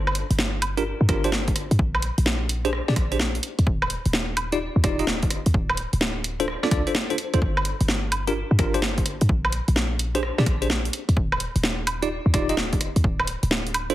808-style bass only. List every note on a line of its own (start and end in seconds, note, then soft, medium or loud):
0.00 0.23 G1 loud
0.30 0.93 G1 loud
1.01 1.06 G2 loud
1.09 1.64 G1 medium
1.71 1.77 G2 medium
1.79 2.11 A#1 loud
2.18 2.81 A#1 loud
2.88 2.94 A#2 medium
2.96 3.39 A#1 medium
3.59 3.64 D#2 medium
3.67 3.98 D#1 loud
4.06 4.69 D#1 loud
4.76 4.82 D#2 loud
4.84 5.39 D#1 medium
5.46 5.52 D#2 medium
5.54 5.86 D1 loud
5.93 6.56 D1 loud
6.71 6.82 C2 medium
7.34 7.39 D2 medium
7.42 7.73 G1 loud
7.81 8.44 G1 loud
8.51 8.57 G2 loud
8.59 9.14 G1 medium
9.21 9.27 G2 medium
9.29 9.61 A#1 loud
9.68 10.31 A#1 loud
10.38 10.44 A#2 loud
10.46 10.89 A#1 medium
11.09 11.14 D#2 medium
11.17 11.48 D#1 loud
11.56 12.19 D#1 loud
12.26 12.31 D#2 loud
12.34 12.89 D#1 medium
12.96 13.02 D#2 medium
13.04 13.36 D1 loud
13.43 13.95 D1 loud